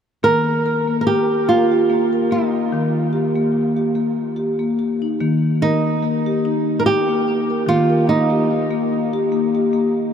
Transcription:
0.23 2.67 D#3 medium
0.23 0.65 A#3 medium
0.23 0.96 A#4 medium
0.66 0.88 A#4 soft
0.88 1.06 A#3 medium
1.01 1.06 A#4 soft
1.07 1.49 G4 medium
1.07 1.48 G4 medium
1.48 1.70 A#3 medium
1.48 2.32 F4 medium
1.72 1.90 G4 medium
1.90 2.12 A#3 medium
2.13 2.31 A#4 medium
2.31 2.72 A#3 medium
2.31 3.10 D#4 medium
2.72 5.16 D#3 medium
3.13 3.35 G4 medium
3.36 3.77 A#3 medium
3.77 3.95 G4 soft
3.95 4.37 A#3 medium
4.36 4.59 G4 medium
4.59 4.78 A#3 medium
4.79 5.01 G4 medium
5.02 5.20 D#4 soft
5.20 6.47 D#3 medium
5.20 5.61 A#3 medium
5.62 6.40 D#4 medium
5.62 6.03 A#4 medium
6.03 6.25 A#3 medium
6.26 6.44 G4 medium
6.45 6.85 D#4 medium
6.80 6.85 A#4 medium
6.86 7.70 G4 medium
6.86 7.08 G4 medium
7.09 7.49 A#3 medium
7.50 7.68 A#4 medium
7.67 8.93 D#3 medium
7.67 7.90 A#3 medium
7.67 8.08 F4 medium
7.90 8.08 A#4 medium
8.07 8.30 A#3 medium
8.07 9.69 D#4 medium
8.30 8.72 G4 medium
8.71 9.12 A#3 medium
9.13 9.32 G4 medium
9.32 9.55 A#3 medium
9.55 9.73 G4 medium
9.73 10.12 A#3 medium

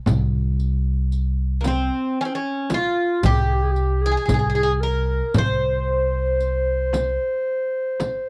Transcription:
0.06 1.88 C2 medium
0.06 riq medium
0.06 frame drum medium
0.06 darbuka dum loud
0.60 riq soft
0.60 darbuka ka soft
1.12 riq soft
1.12 darbuka ka soft
1.61 1.67 A#3 medium
1.61 2.32 C4 medium
1.61 riq soft
1.61 darbuka tek medium
1.65 2.21 C4 medium
1.65 frame drum medium
2.21 2.25 C#4 medium
2.25 2.32 C4 medium
2.31 2.72 C#4 medium
2.35 2.73 C#4 medium
2.70 3.24 F4 medium
2.70 riq medium
2.70 darbuka tek medium
2.70 frame drum medium
2.74 3.25 F4 medium
3.23 4.14 C2 medium
3.23 3.33 G4 medium
3.23 4.05 G4 medium
3.23 riq medium
3.23 darbuka dum loud
3.23 frame drum medium
3.31 3.42 G#4 medium
3.41 3.47 G4 medium
3.46 3.55 G#4 medium
3.53 3.64 G4 medium
3.63 3.73 G#4 medium
3.71 4.03 G4 medium
3.76 riq soft
4.02 4.82 G#4 medium
4.06 4.10 G#4 medium
4.12 4.16 G#4 medium
4.17 4.24 G#4 medium
4.26 5.20 C2 medium
4.26 4.33 G#4 medium
4.26 riq medium
4.26 darbuka dum medium
4.26 frame drum medium
4.34 4.38 G#4 medium
4.39 4.48 G#4 soft
4.50 4.54 G#4 medium
4.55 4.62 G#4 medium
4.63 4.71 G#4 medium
4.81 5.36 A#4 medium
4.81 5.37 A#4 medium
4.81 darbuka ka soft
5.34 7.17 C2 medium
5.34 8.29 C5 medium
5.34 riq medium
5.34 frame drum medium
5.34 darbuka dum medium
5.38 8.29 C5 medium
5.88 darbuka ka soft
6.40 riq soft
6.93 riq soft
6.93 darbuka tek medium
6.93 frame drum medium
8.00 riq soft
8.00 darbuka tek medium
8.00 frame drum medium

